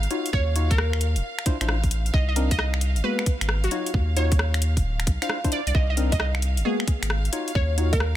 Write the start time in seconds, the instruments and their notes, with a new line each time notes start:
Already playing: violin section F5
0.03 closed hi-hat
0.11 synth stab D#4 F4 F#4 C#5, closed hi-hat
0.26 closed hi-hat
0.33 sub bass D#2, synth pluck C#5, kick
0.56 synth stab D#4 F4 F#4 C#5, closed hi-hat
0.70 synth pluck A#4, kick, closed hi-hat
0.78 cross-stick
0.93 finger snap
1.01 closed hi-hat
1.16 sub bass D1, closed hi-hat
1.39 finger snap
1.46 synth stab D4 E4 F4 C5, kick, closed hi-hat
1.61 sub bass A1, synth stab D4 E4 F4 C5, finger snap, closed hi-hat
1.69 cross-stick
1.84 kick, closed hi-hat
1.91 closed hi-hat
2.06 closed hi-hat
2.14 sub bass C2, synth pluck D#5, kick
2.29 synth pluck D#5
2.36 synth stab C4 D4 D#4 A#4, closed hi-hat
2.51 synth pluck D#5, kick, closed hi-hat
2.59 synth pluck D#5, cross-stick
2.74 finger snap
2.81 closed hi-hat
2.96 sub bass G1, closed hi-hat
3.04 synth stab G#3 A#3 B3 F#4, synth pluck B4
3.19 finger snap
3.26 kick, closed hi-hat
3.41 sub bass G#1, finger snap, closed hi-hat
3.49 cross-stick
3.64 synth pluck F#4, closed hi-hat
3.71 synth stab D#4 F4 F#4 C#5, closed hi-hat
3.86 closed hi-hat
3.94 sub bass D#2, kick
4.17 synth stab D#4 F4 F#4 C#5, synth pluck C#5, closed hi-hat
4.32 kick, closed hi-hat
4.39 cross-stick
4.54 finger snap, closed hi-hat
4.62 closed hi-hat
4.77 sub bass D1, kick, closed hi-hat
5.00 finger snap, closed hi-hat
5.07 sub bass C2, kick, closed hi-hat
5.22 synth stab D4 E4 F4 C5, synth pluck F5, finger snap, closed hi-hat
5.30 cross-stick
5.44 synth stab D4 E4 F4 C5, kick, closed hi-hat
5.52 synth pluck D5, closed hi-hat
5.67 sub bass C2, synth pluck D5, closed hi-hat
5.75 sub bass C2, synth pluck D#5, violin section F5, kick
5.90 synth pluck D#5
5.97 synth stab C4 D4 D#4 A#4, closed hi-hat
6.12 synth pluck D#5, kick, closed hi-hat, high bongo
6.20 synth pluck D#5, cross-stick
6.35 finger snap
6.42 closed hi-hat
6.57 sub bass G1, closed hi-hat
6.65 synth stab G#3 A#3 B3 F#4, synth pluck G#4
6.80 finger snap
6.88 kick, closed hi-hat
7.02 sub bass G#1, finger snap, closed hi-hat
7.10 cross-stick
7.25 closed hi-hat
7.33 synth stab D#4 F4 F#4 C#5, closed hi-hat
7.48 closed hi-hat
7.55 sub bass D#2, synth pluck C#5, kick
7.78 synth stab D#4 F4 F#4 C#5, closed hi-hat
7.93 synth pluck A#4, kick, closed hi-hat, high bongo
8.00 cross-stick